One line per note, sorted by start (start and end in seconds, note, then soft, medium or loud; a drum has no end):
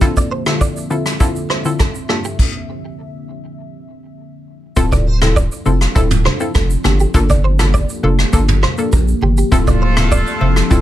0.00 0.43 D3 medium
0.00 2.07 D3 medium
0.00 2.35 F3 medium
0.00 0.43 C4 medium
0.00 2.07 C4 medium
0.00 0.43 E4 medium
0.00 0.43 F4 medium
0.00 0.43 A4 loud
0.00 2.07 E5 medium
0.00 kick loud
0.00 shaker medium
0.17 0.28 D5 medium
0.17 kick medium
0.17 shaker soft
0.31 0.43 C5 medium
0.46 0.87 D3 medium
0.46 0.87 C4 medium
0.46 0.87 E4 medium
0.46 0.87 F4 medium
0.46 0.87 A4 medium
0.46 cross-stick loud
0.46 shaker soft
0.61 0.83 D5 medium
0.61 kick medium
0.61 shaker medium
0.76 shaker medium
0.90 1.18 D3 medium
0.90 1.18 C4 medium
0.90 1.18 E4 medium
0.90 1.18 F4 medium
0.90 1.18 A4 medium
0.90 shaker soft
1.06 cross-stick medium
1.06 shaker medium
1.20 1.62 D3 medium
1.20 1.62 C4 medium
1.20 1.62 E4 medium
1.20 1.62 F4 medium
1.20 1.62 A4 medium
1.20 kick loud
1.20 shaker medium
1.36 shaker medium
1.50 1.62 C5 medium
1.50 cross-stick medium
1.65 1.83 D3 medium
1.65 1.83 C4 medium
1.65 1.83 E4 medium
1.65 1.83 F4 medium
1.65 1.83 A4 medium
1.65 shaker medium
1.79 1.91 A4 medium
1.79 kick loud
1.79 cross-stick medium
1.79 shaker medium
1.95 shaker medium
2.09 2.28 G2 medium
2.09 2.28 A#3 medium
2.09 2.28 D4 medium
2.09 2.28 F4 medium
2.09 2.21 G4 medium
2.09 2.28 A4 medium
2.09 cross-stick medium
2.24 2.35 G4 medium
2.24 shaker medium
2.39 kick loud
2.39 crash medium
4.76 5.48 D1 loud
4.76 6.83 F3 medium
4.76 5.18 C4 medium
4.76 6.83 C4 medium
4.76 6.83 D4 medium
4.76 5.18 E4 medium
4.76 5.18 F4 medium
4.76 5.18 A4 loud
4.76 kick loud
4.76 shaker medium
4.92 5.07 D5 medium
4.92 kick medium
4.92 high conga medium
4.92 shaker medium
5.07 5.18 C5 medium
5.22 5.62 C4 medium
5.22 5.62 E4 medium
5.22 5.62 F4 medium
5.22 5.63 A4 medium
5.22 cross-stick loud
5.22 high conga medium
5.22 shaker medium
5.36 5.58 D5 medium
5.36 kick medium
5.36 low conga medium
5.36 shaker medium
5.52 shaker medium
5.66 5.87 F1 loud
5.66 5.93 C4 medium
5.66 5.93 E4 medium
5.66 5.93 F4 medium
5.66 5.93 A4 medium
5.66 high conga medium
5.66 shaker soft
5.81 cross-stick medium
5.81 shaker medium
5.95 6.28 D1 loud
5.95 6.37 C4 medium
5.95 6.37 E4 medium
5.95 6.37 F4 medium
5.95 6.37 A4 loud
5.95 kick loud
5.95 shaker medium
6.11 mid tom medium
6.11 shaker soft
6.25 6.37 C5 medium
6.25 cross-stick medium
6.25 high conga medium
6.40 6.58 C4 medium
6.40 6.58 E4 medium
6.40 6.58 F4 medium
6.40 6.58 A4 medium
6.40 shaker medium
6.55 6.76 F1 loud
6.55 6.67 A4 medium
6.55 kick medium
6.55 cross-stick loud
6.55 high conga medium
6.55 low conga medium
6.55 shaker medium
6.70 shaker medium
6.84 7.06 G1 loud
6.84 9.49 F3 medium
6.84 7.03 A#3 medium
6.84 9.49 A#3 medium
6.84 7.03 D4 medium
6.84 7.03 F4 medium
6.84 9.49 G4 medium
6.84 6.96 G4 medium
6.84 7.03 A4 medium
6.84 cross-stick medium
6.84 high conga medium
6.84 shaker medium
7.00 7.11 G4 medium
7.00 shaker medium
7.14 7.85 G1 loud
7.14 7.56 A#3 medium
7.14 7.56 D4 medium
7.14 7.56 F4 medium
7.14 7.56 A4 loud
7.14 kick loud
7.14 shaker medium
7.30 7.40 D5 medium
7.30 kick medium
7.30 high conga medium
7.30 shaker soft
7.44 7.56 C5 medium
7.59 8.00 A#3 medium
7.59 8.00 D4 medium
7.59 8.00 F4 medium
7.59 8.00 A4 medium
7.59 cross-stick loud
7.59 high conga medium
7.59 shaker medium
7.74 7.96 D5 medium
7.74 kick medium
7.74 low conga medium
7.74 shaker medium
7.89 shaker medium
8.03 8.25 F1 medium
8.03 8.31 A#3 medium
8.03 8.31 D4 medium
8.03 8.31 F4 medium
8.03 8.31 A4 medium
8.03 high conga medium
8.19 cross-stick medium
8.19 shaker medium
8.33 8.65 G1 loud
8.33 8.74 A#3 medium
8.33 8.74 D4 medium
8.33 8.75 F4 medium
8.33 8.75 A4 loud
8.33 kick loud
8.33 shaker medium
8.48 mid tom medium
8.48 shaker medium
8.63 8.74 C5 medium
8.63 cross-stick medium
8.63 high conga medium
8.78 8.96 A#3 medium
8.78 8.96 D4 medium
8.78 8.96 F4 medium
8.78 8.96 A4 medium
8.78 shaker medium
8.93 9.14 A#1 medium
8.93 9.04 A#4 medium
8.93 kick medium
8.93 high conga medium
8.93 low conga medium
8.93 shaker medium
9.08 shaker medium
9.22 9.43 G1 loud
9.22 9.34 G4 medium
9.22 high conga medium
9.37 9.48 G4 medium
9.37 shaker medium
9.52 10.23 D1 loud
9.52 10.81 F3 medium
9.52 10.81 A3 medium
9.52 9.93 C4 medium
9.52 10.81 C4 medium
9.52 10.81 D4 medium
9.52 9.93 E4 medium
9.52 10.81 F4 medium
9.52 9.93 F4 medium
9.52 10.81 A4 loud
9.52 9.93 A4 loud
9.52 kick loud
9.52 shaker medium
9.67 9.78 D5 medium
9.67 kick medium
9.67 high conga medium
9.67 shaker medium
9.82 9.93 C5 medium
9.97 10.37 C4 medium
9.97 10.38 E4 medium
9.97 10.38 F4 medium
9.97 10.38 A4 medium
9.97 cross-stick loud
9.97 high conga medium
9.97 shaker medium
10.11 10.34 D5 medium
10.11 kick medium
10.11 low conga medium
10.11 shaker medium
10.27 shaker medium
10.41 10.62 F1 medium
10.41 10.68 C4 medium
10.41 10.68 E4 medium
10.41 10.68 F4 medium
10.41 10.69 A4 medium
10.41 high conga medium
10.56 cross-stick medium
10.56 shaker medium
10.70 10.81 D1 loud
10.70 10.81 C4 medium
10.70 10.81 E4 medium
10.70 10.81 F4 medium
10.70 10.81 A4 loud
10.70 kick loud
10.70 shaker medium